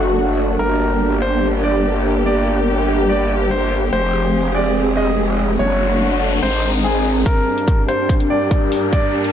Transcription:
Already playing: wobble bass F#1, string section A3 D4 F#4, analog synth pad D4 F#4 A4 F#5
0.59 wobble bass G1, string section A#3 G4, grand piano A#4
0.67 analog synth pad G4
0.79 analog synth pad A#4
1.22 grand piano C5
1.40 analog synth pad G5
1.64 grand piano D5
2.26 grand piano D5
3.09 grand piano D5
3.51 grand piano C5
3.93 wobble bass F1, string section F3 C4 G#4, analog synth pad C4, grand piano C5, riser
4.02 analog synth pad F5
4.25 analog synth pad G#3
4.55 grand piano D5
4.97 grand piano D#5
5.59 wobble bass F#1, string section A3 D4 F#4, analog synth pad D4, grand piano C#5
5.73 analog synth pad F#5 A5
5.88 analog synth pad A4
6.43 wobble bass G#1, string section G#3 C4 D#4, analog synth pad C4, grand piano C5
6.56 analog synth pad G#4
6.80 grand piano G#4, analog synth pad D#5 G#5
7.26 string section G2 G3 A#3 D4, analog synth pad D4, grand piano A#4, kick, closed hi-hat, riser
7.39 analog synth pad G4 G5
7.58 closed hi-hat
7.63 analog synth pad A#4
7.68 kick, closed hi-hat
7.88 grand piano C5, closed hi-hat
8.09 kick, closed hi-hat
8.20 closed hi-hat
8.30 grand piano D5
8.51 kick, closed hi-hat
8.72 open hi-hat
8.93 grand piano D5, kick, closed hi-hat
9.24 closed hi-hat

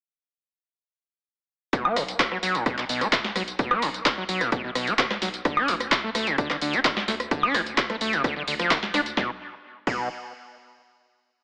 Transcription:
1.73 acid bass B2, kick, closed hi-hat, tambourine
1.85 acid bass B3, high woodblock
1.96 sub bass B1, acid bass B2, cross-stick, open hi-hat, tambourine
2.08 closed hi-hat, tambourine
2.20 kick, clap, closed hi-hat, tambourine
2.32 acid bass F#3, cross-stick
2.43 sub bass B1, acid bass F#3, open hi-hat, tambourine
2.55 acid bass A2, closed hi-hat, tambourine
2.66 acid bass B2, kick, cross-stick, closed hi-hat, tambourine
2.78 acid bass B2, clap
2.89 sub bass B1, acid bass B2, open hi-hat, tambourine
3.01 acid bass B3, cross-stick, closed hi-hat, tambourine
3.12 acid bass B2, kick, clap, closed hi-hat, tambourine
3.24 snare
3.36 sub bass B1, acid bass F#3, cross-stick, snare, open hi-hat, tambourine
3.48 closed hi-hat, tambourine
3.59 acid bass B2, kick, closed hi-hat, tambourine
3.71 acid bass B3, cross-stick, high woodblock
3.82 sub bass B1, acid bass B2, open hi-hat, tambourine
3.94 closed hi-hat, tambourine
4.06 kick, cross-stick, clap, closed hi-hat, tambourine
4.18 acid bass F#3
4.29 sub bass B1, acid bass F#3, open hi-hat, tambourine
4.41 acid bass A2, cross-stick, closed hi-hat, tambourine
4.52 acid bass B2, kick, closed hi-hat, tambourine
4.64 acid bass B2
4.75 sub bass B1, acid bass B2, cross-stick, open hi-hat, tambourine
4.87 acid bass B3, closed hi-hat, tambourine
4.99 acid bass B2, kick, clap, closed hi-hat, tambourine
5.11 cross-stick, snare
5.22 sub bass B1, acid bass F#3, snare, open hi-hat, tambourine
5.34 closed hi-hat, tambourine
5.45 acid bass D3, kick, cross-stick, closed hi-hat, tambourine
5.57 acid bass D4, high woodblock
5.68 sub bass D2, acid bass D3, open hi-hat, tambourine
5.80 cross-stick, closed hi-hat, tambourine
5.92 kick, clap, closed hi-hat, tambourine
6.04 acid bass A3
6.15 sub bass D2, acid bass A3, cross-stick, open hi-hat, tambourine
6.27 acid bass C3, closed hi-hat, tambourine
6.38 acid bass D3, kick, closed hi-hat, tambourine
6.50 acid bass D3, cross-stick, clap
6.61 sub bass D2, acid bass D3, open hi-hat, tambourine
6.73 acid bass D4, closed hi-hat, tambourine
6.85 acid bass D3, kick, cross-stick, clap, closed hi-hat, tambourine
6.97 snare
7.08 sub bass D2, acid bass A3, snare, open hi-hat, tambourine
7.20 cross-stick, closed hi-hat, tambourine
7.31 acid bass D3, kick, closed hi-hat, tambourine
7.43 acid bass D4, high woodblock
7.54 sub bass D2, acid bass D3, cross-stick, open hi-hat, tambourine
7.66 closed hi-hat, tambourine
7.78 kick, clap, closed hi-hat, tambourine
7.90 acid bass A3, cross-stick, snare, closed hi-hat
8.01 sub bass D2, acid bass A3, open hi-hat, tambourine
8.13 acid bass C3, closed hi-hat, tambourine
8.24 acid bass D3, kick, cross-stick, closed hi-hat, tambourine
8.36 acid bass D3
8.48 sub bass D2, acid bass D3, open hi-hat, tambourine
8.59 acid bass F3, cross-stick, closed hi-hat, tambourine
8.71 acid bass D3, kick, clap, closed hi-hat, tambourine
8.83 snare
8.94 sub bass D2, acid bass D4, cross-stick, snare, open hi-hat, tambourine
9.06 closed hi-hat, tambourine
9.17 sub bass B1, acid bass B2, kick, snare
9.87 sub bass B1, acid bass B2, kick, crash

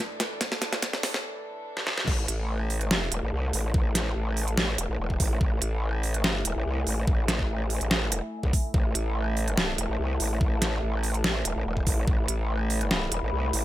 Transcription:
Already playing: string section A2 E3 D4 A4
0.20 snare, closed hi-hat
0.41 kick, snare, closed hi-hat
0.52 snare
0.62 snare, closed hi-hat
0.73 snare, closed hi-hat
0.83 kick, snare, closed hi-hat
0.93 snare
1.03 snare, open hi-hat
1.14 snare
1.77 snare
1.87 snare
1.98 snare
2.08 wobble bass A1, string section A3 E4 E5 A5, kick, crash
2.28 wobble bass A1, closed hi-hat
2.70 open hi-hat
2.81 closed hi-hat
2.91 snare
3.12 wobble bass E1, closed hi-hat
3.23 wobble bass A1
3.33 wobble bass C2
3.53 wobble bass A1, open hi-hat
3.74 wobble bass A1, kick
3.95 snare, closed hi-hat
4.16 wobble bass A1
4.37 open hi-hat
4.48 closed hi-hat
4.58 snare
4.78 wobble bass E1, closed hi-hat
4.89 wobble bass A1
4.99 wobble bass E1
5.10 kick
5.20 wobble bass A1, kick, open hi-hat
5.41 wobble bass A1, string section G#5, kick
5.62 wobble bass A1, closed hi-hat
6.03 open hi-hat
6.14 closed hi-hat
6.20 wobble bass G#1
6.24 snare
6.45 wobble bass E1, closed hi-hat
6.56 wobble bass A1
6.66 wobble bass C2
6.87 wobble bass A1, open hi-hat
7.07 wobble bass A1, kick
7.28 snare, closed hi-hat
7.39 kick
7.49 wobble bass A1
7.70 open hi-hat
7.81 wobble bass A1, closed hi-hat
7.91 snare
8.12 closed hi-hat
8.43 wobble bass C2, kick
8.53 kick, open hi-hat
8.74 wobble bass A1, string section A5, kick
8.95 wobble bass A1, closed hi-hat
9.37 open hi-hat
9.48 closed hi-hat
9.58 snare
9.78 wobble bass E1, closed hi-hat
9.89 wobble bass A1
9.99 wobble bass C2
10.20 wobble bass A1, open hi-hat
10.41 wobble bass A1, kick
10.62 snare, closed hi-hat
10.83 wobble bass A1
11.03 open hi-hat
11.14 closed hi-hat
11.24 snare
11.45 wobble bass E1, closed hi-hat
11.56 wobble bass A1
11.66 wobble bass E1
11.77 kick
11.87 wobble bass A1, kick, open hi-hat
12.07 wobble bass A1, string section B5, kick
12.28 wobble bass A1, closed hi-hat
12.70 open hi-hat
12.81 closed hi-hat
12.91 snare
13.12 wobble bass E1, closed hi-hat
13.23 wobble bass A1
13.32 wobble bass C2
13.53 wobble bass A1, open hi-hat

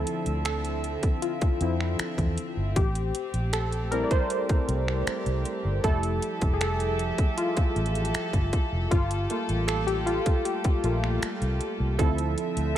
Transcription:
Already playing: string section D3 F3 C4 E5, synth keys F3 C4 E4 A4
0.07 closed hi-hat
0.26 fingered electric bass D2, closed hi-hat
0.45 synth keys A4, finger snap, closed hi-hat
0.65 closed hi-hat
0.84 closed hi-hat
1.03 kick, closed hi-hat
1.22 synth keys F4, closed hi-hat
1.41 kick, closed hi-hat
1.61 fingered electric bass F2, synth keys F3 C4 E4, closed hi-hat
1.80 finger snap
1.99 finger snap, muted fingered electric bass stroke, closed hi-hat
2.18 fingered electric bass E2, kick, closed hi-hat
2.38 closed hi-hat
2.57 fingered electric bass G1
2.76 fingered electric bass A1, string section A3 G4, synth keys G4, kick, closed hi-hat
2.95 closed hi-hat
3.15 closed hi-hat
3.34 fingered electric bass A#1, closed hi-hat
3.53 synth keys A4, finger snap, closed hi-hat
3.72 closed hi-hat
3.91 synth keys G3 C4 E4 A#4, closed hi-hat
4.03 synth keys D5
4.11 synth keys C5, kick, closed hi-hat
4.30 closed hi-hat
4.49 kick, closed hi-hat
4.68 fingered electric bass C2, closed hi-hat
4.88 finger snap
5.07 finger snap, muted fingered electric bass stroke, closed hi-hat
5.26 fingered electric bass C2, closed hi-hat
5.45 closed hi-hat
5.65 fingered electric bass G1
5.84 fingered electric bass F1, string section F3 A4 E5, synth keys G3 A3 E4 A4, kick, closed hi-hat
6.03 closed hi-hat
6.22 closed hi-hat
6.41 fingered electric bass F1, kick, closed hi-hat
6.54 synth keys G#4
6.61 synth keys A4, finger snap, closed hi-hat
6.80 closed hi-hat
6.99 closed hi-hat
7.18 kick, closed hi-hat
7.38 synth keys F4, closed hi-hat
7.57 kick, closed hi-hat
7.76 fingered electric bass A1, closed hi-hat
7.86 closed hi-hat
7.95 closed hi-hat
8.05 closed hi-hat
8.14 finger snap, muted fingered electric bass stroke, closed hi-hat
8.33 fingered electric bass G1, kick, closed hi-hat
8.53 kick, closed hi-hat
8.72 fingered electric bass F1
8.91 fingered electric bass G1, string section G3 F4 G4, synth keys F4, kick, closed hi-hat
9.11 closed hi-hat
9.30 synth keys A3 A#3 F4, closed hi-hat
9.49 fingered electric bass A1, closed hi-hat
9.68 synth keys A4, finger snap, closed hi-hat
9.87 synth keys G4, closed hi-hat
10.06 synth keys F4, closed hi-hat
10.26 kick, closed hi-hat
10.45 synth keys G4, closed hi-hat
10.64 kick, closed hi-hat
10.84 fingered electric bass A#1, synth keys A3 A#3 F4, closed hi-hat
11.04 finger snap
11.22 finger snap, muted fingered electric bass stroke, closed hi-hat
11.41 fingered electric bass C2, closed hi-hat
11.61 closed hi-hat
11.80 fingered electric bass C2
11.99 fingered electric bass D2, string section D3 F3 C4 E5, synth keys F3 C4 E4 A4, kick, closed hi-hat
12.18 closed hi-hat
12.38 closed hi-hat
12.57 fingered electric bass D2, closed hi-hat

